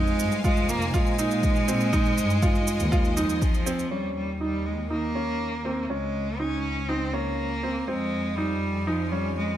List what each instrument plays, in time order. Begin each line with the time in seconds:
Already playing: double bass section F2, cello G#3, grand piano D#4, string section D#4 C5 F5 G#5
0.07 shaker
0.19 double bass section G2, shaker
0.32 shaker
0.44 cello G#3, grand piano F4, kick, shaker
0.57 shaker
0.69 double bass section F1, cello A#3, shaker
0.82 shaker
0.87 cello A#3
0.94 double bass section A#2, cello G#3, grand piano F4, kick, shaker
1.07 shaker
1.19 grand piano D#4, shaker
1.31 shaker
1.43 kick, shaker
1.56 shaker
1.68 grand piano C4, shaker
1.80 shaker
1.93 grand piano D#4, string section D#5, kick, shaker
2.05 shaker
2.18 double bass section G2, shaker
2.30 shaker
2.42 grand piano F4, kick, shaker
2.55 shaker
2.67 shaker
2.80 double bass section D#2, shaker
2.92 grand piano F4, kick, shaker
3.05 shaker
3.17 double bass section F2, grand piano D#4, shaker
3.29 shaker
3.41 cello F3, kick, shaker
3.54 shaker
3.66 grand piano C4, shaker
3.79 shaker
3.91 double bass section D#2, cello G3, grand piano C#4, string section C#4 A#4 D#5 G5
4.16 cello G3
4.41 cello G3, grand piano D#4
4.66 cello G#3
4.90 cello A#3, grand piano D#4
5.15 grand piano C#4
5.65 grand piano C4
5.83 cello A#3
5.90 double bass section C#2, cello G#3, string section C#4 C5 F5 G#5, grand piano C#4
6.39 cello C#4, grand piano D#4
6.88 cello C4, grand piano D#4
7.13 cello A#3, grand piano C#4
7.63 grand piano C4
7.87 double bass section F2, cello G#3, grand piano C4, string section D#4
8.38 cello G3, grand piano D#4
8.87 cello F3, grand piano D#4
9.12 cello G3, grand piano C#4
9.37 cello G#3